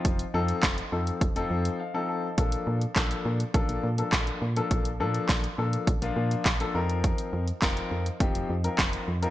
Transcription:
<<
  \new Staff \with { instrumentName = "Grand piano" } { \time 4/4 \key bes \major \tempo 4 = 103 << { r2. f''8 a''8 | r1 | r1 | r1 | } \\ { <f c' ees' f'>16 r16 <f c' ees' a'>8. r16 <f c' ees' a'>8 r16 <f c' ees' a'>8. r16 <f c' ees' a'>8 r16 | <f bes d' a'>8. r16 <f bes d' a'>8. r16 <f bes d' a'>8 r16 <f bes d' a'>8. r16 <f bes d' a'>16~ | <f bes d' a'>16 r16 <f bes d' a'>8. r16 <f bes d' a'>8 r16 <f bes d' f'>8. r16 <f bes d' a'>16 <f c' ees' bes'>8~ | <f c' ees' bes'>8. r16 <f c' ees' bes'>8. r16 <f c' ees' g'>8 r16 <f c' ees' bes'>8. r16 <f c' ees' bes'>16 | } >> }
  \new Staff \with { instrumentName = "FM bass" } { \clef bass \time 4/4 \key bes \major f,,8 f,8 f,,8 f,8 f,,16 f,,16 f,8 r4 | bes,,8 bes,8 bes,,8 bes,8 bes,,16 bes,,16 bes,8 bes,,8 bes,8 | bes,,8 bes,8 bes,,8 bes,8 bes,,16 bes,,16 bes,8 bes,,8 f,8~ | f,8 f,8 f,,8 f,8 f,,16 f,,16 f,8 f,,8 f,8 | }
  \new DrumStaff \with { instrumentName = "Drums" } \drummode { \time 4/4 <hh bd>16 hh8 hh16 <hc hh bd sn>16 hh8 hh16 <hh bd>16 hh8 hh16 r4 | <hh bd>16 hh8 hh16 <hc hh bd sn>16 hh8 hh16 <hh bd>16 hh8 hh16 <hc hh bd sn>16 hh8 hh16 | <hh bd>16 hh8 hh16 <hc hh bd sn>16 hh8 hh16 <hh bd>16 hh8 hh16 <hc hh bd sn>16 hh8 hh16 | <hh bd>16 hh8 hh16 <hc hh bd sn>16 hh8 hh16 <hh bd>16 hh8 hh16 <hc hh bd sn>16 hh8 hh16 | }
>>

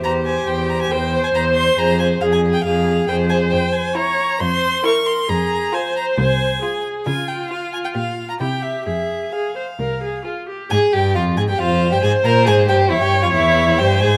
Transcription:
<<
  \new Staff \with { instrumentName = "Violin" } { \time 4/4 \key f \minor \tempo 4 = 136 bes''8 aes''8 g''8 bes''16 aes''16 g''8. aes''16 bes''8 c'''8 | bes''8 aes''8 f''16 aes''8 g''16 f''4 g''8 aes''8 | g''8 aes''8 bes''4 c'''4 des'''8 c'''8 | bes''4 aes''8 bes''8 aes''4. r8 |
aes''8 g''8 f''8 aes''16 g''16 f''8. bes''16 g''8 e''8 | e''4 f''2 r4 | aes''8 g''8 f''8 aes''16 g''16 f''8. g''16 aes''8 bes''8 | aes''8 g''8 e''16 g''8 f''16 e''4 g''8 aes''8 | }
  \new Staff \with { instrumentName = "Viola" } { \time 4/4 \key f \minor g'2 c''2~ | c''4 aes'4 aes'4 c''4~ | c''4 des''4 c''4 bes'4 | aes'4 c''2 aes'4 |
f'2. g'4 | aes'4 aes'8 c''8 bes'8 aes'8 f'8 g'8 | r2 c''2~ | c''4 des''2 c''4 | }
  \new Staff \with { instrumentName = "Violin" } { \time 4/4 \key f \minor c''8 c''8 c''8 c''8 c''8 c''8 c''8 c''8 | aes'8 aes'8 aes'8 aes'8 aes'8 aes'8 aes'8 aes'8 | r4 e'4 r4 e'4 | r4 f'4 r4 f'4 |
r4 f'4 g'4 e'4 | r4 aes'4 r4 aes'4 | aes'8 g'8 f'8 aes'16 g'16 f'8. g'16 aes'8 bes'8 | aes'8 g'8 e'16 g'8 f'16 e'4 g'8 aes'8 | }
  \new Staff \with { instrumentName = "Cello" } { \clef bass \time 4/4 \key f \minor e,4 e,4 e,4 e,4 | f,4 f,4 f,4 f,4 | f,4 r4 f,4 r4 | f,4 r4 c,4 r4 |
des4 r4 bes,4 c4 | f,4 r4 c,4 r4 | aes,8 g,8 f,8 aes,16 g,16 f,8. g,16 aes,8 bes,8 | aes,8 g,8 e,16 g,8 f,16 e,4 g,8 aes,8 | }
>>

